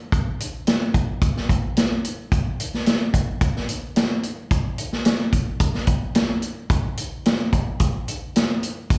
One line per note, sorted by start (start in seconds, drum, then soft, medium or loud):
0.12 kick medium
0.12 closed hi-hat medium
0.40 closed hi-hat medium
0.67 snare loud
0.67 closed hi-hat medium
0.94 kick medium
0.94 closed hi-hat medium
1.21 kick loud
1.21 closed hi-hat medium
1.37 snare soft
1.49 kick medium
1.49 closed hi-hat medium
1.77 snare medium
1.77 closed hi-hat medium
2.04 closed hi-hat medium
2.32 kick loud
2.32 closed hi-hat medium
2.60 closed hi-hat medium
2.74 snare soft
2.86 snare medium
2.86 closed hi-hat medium
3.14 kick medium
3.14 closed hi-hat medium
3.41 kick loud
3.41 closed hi-hat medium
3.56 snare soft
3.69 closed hi-hat medium
3.96 snare loud
3.96 closed hi-hat medium
4.23 closed hi-hat medium
4.51 kick loud
4.51 closed hi-hat medium
4.78 closed hi-hat medium
4.93 snare soft
5.05 snare loud
5.05 closed hi-hat medium
5.33 kick medium
5.33 closed hi-hat medium
5.60 kick medium
5.60 closed hi-hat medium
5.74 snare soft
5.87 kick medium
5.87 closed hi-hat medium
6.15 snare medium
6.15 closed hi-hat medium
6.42 closed hi-hat medium
6.70 kick loud
6.70 closed hi-hat medium
6.97 closed hi-hat medium
7.25 snare loud
7.25 closed hi-hat medium
7.53 kick medium
7.53 closed hi-hat medium
7.80 kick medium
7.80 closed hi-hat medium
8.08 closed hi-hat medium
8.36 snare medium
8.36 closed hi-hat medium
8.63 closed hi-hat medium
8.90 kick loud
8.90 closed hi-hat medium